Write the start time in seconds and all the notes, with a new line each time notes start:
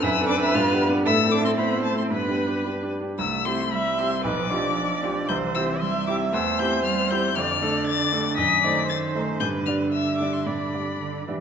0.03 F#2 E4 B4 E6
0.20 C4 D4 A4
0.29 D4 D6
0.37 C4 D4 A4
0.41 E4 E6
0.55 G2 F4 F6
0.72 B3 D4 G4
0.89 B3 D4 G4
1.06 A2 E4 A4 E6
1.23 A3 C4 E4
1.31 D4 D6
1.41 A3 C4 E4
1.45 C4 C6
1.57 A3 B3 C4 E4 C5 B5
1.76 A3 C4 E4
1.84 A3 A5
1.93 A3 C4 E4
1.97 C4 C6
2.11 G2 B3 B4 B5
2.28 D4 G4
2.46 D4 G4
2.65 D4 G4
2.82 D4 G4
3.01 D4 G4
3.19 C2 A3 E6
3.45 C4 E4 G4 C6
3.72 G3 E5 B5
3.98 C4 E4 G4 C6
4.24 B1 F3 B4 D6
4.50 F3 D4 F4 G4 D5
5.03 D4 F4 G4
5.28 C2 E3 C5 G6
5.55 C4 E4 G4 E6
5.81 G3 E5 C6
6.07 C4 E4 G4 D6
6.33 E2 A3 C5 E6
6.59 C4 E4 G4 G6
6.84 G3 F6
7.11 C4 E4 G4 G6
7.34 F2 D3 D5 F6
7.60 A3 D4 A4 D5
7.87 A6
8.12 A3 D4 A4
8.37 F#2 D#3 D#5 B6
8.63 A3 D#4 C5 D5
8.88 C5 A6
9.15 A3 D#4 C5
9.40 G2 D3 B4 G6
9.66 G3 D4 D5 F6
9.92 E5 E6
10.19 G3 D4 D5 D6
10.33 C6
10.46 G2 D5 B5
10.73 G3 D4 D5
11.00 D3
11.27 E3 G3 D4 D5